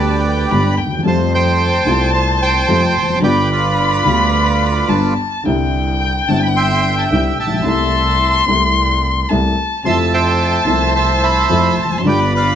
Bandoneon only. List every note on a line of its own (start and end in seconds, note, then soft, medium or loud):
0.00 0.75 G4 medium
0.00 0.75 B4 soft
0.00 0.74 D5 medium
1.07 1.33 C5 medium
1.07 1.19 A5 medium
1.34 2.13 C5 medium
1.34 2.11 G5 medium
2.13 2.41 C5 medium
2.13 2.26 A5 medium
2.42 3.19 C5 medium
2.42 3.19 G5 loud
3.23 3.51 B4 medium
3.23 3.50 D5 medium
3.23 3.49 G5 medium
3.52 5.14 F4 medium
3.52 5.14 B4 medium
3.52 5.14 D5 medium
6.01 6.13 G5 medium
6.28 6.41 A5 medium
6.43 6.49 B5 medium
6.56 7.39 E5 medium
6.56 7.10 G5 medium
6.56 6.95 C6 medium
6.98 7.04 A5 medium
7.12 7.24 G5 medium
7.40 8.45 E5 medium
7.40 8.45 A5 medium
9.85 10.13 E5 medium
9.85 10.90 A5 medium
9.85 9.97 C6 medium
10.14 10.94 C5 medium
10.14 10.94 E5 medium
10.14 10.64 G5 medium
10.95 12.01 C5 medium
10.95 11.22 E5 medium
10.95 11.07 A5 medium
11.23 12.02 E5 medium
11.23 11.75 B5 loud
11.82 12.08 A5 medium
12.07 12.33 B4 medium
12.07 12.34 D5 medium
12.07 12.20 G5 medium
12.35 12.55 B4 medium
12.35 12.55 D5 medium
12.35 12.55 F5 medium